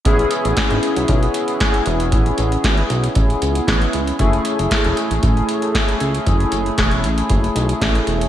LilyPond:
<<
  \new Staff \with { instrumentName = "Analog polysynth" } { \time 4/4 \key a \major \tempo 4 = 116 <b cis' e' gis'>1~ | <b cis' e' gis'>1 | <a cis' e' gis'>1~ | <a cis' e' gis'>1 | }
  \new Staff \with { instrumentName = "Analog synth bass" } { \clef bass \time 4/4 \key a \major a,,8 r16 a,,16 r16 gis,,16 r16 b,,16 b,,8 r4 e,,8 | a,,8 a,,8 gis,,8 b,,8 a,,8 cis,8 a,,8 cis,8 | fis,,8 r16 fis,,16 r16 e,,16 r16 a,,16 a,,8 r4 cis,8 | fis,,8 fis,,8 e,,8 a,,8 fis,,8 b,,8 a,,8 e,,8 | }
  \new DrumStaff \with { instrumentName = "Drums" } \drummode { \time 4/4 <hh bd>16 hh16 hh16 hh16 <hh bd sn>16 hh16 hh16 hh16 <hh bd>16 hh16 hh16 hh16 <hh bd sn>16 hh16 hh16 hh16 | <hh bd>16 hh16 hh16 hh16 <hh bd sn>16 hh16 hh16 hh16 <hh bd>16 hh16 hh16 hh16 <hh bd sn>16 hh16 hh16 hh16 | <hh bd>16 hh16 hh16 hh16 <hh bd sn>16 hh16 hh16 hh16 <hh bd>16 hh16 hh16 hh16 <hh bd sn>16 hh16 hh16 hh16 | <hh bd>16 hh16 hh16 hh16 <hh bd sn>16 hh16 hh16 hh16 <hh bd>16 hh16 hh16 hh16 <hh bd sn>16 hh16 hh16 hh16 | }
>>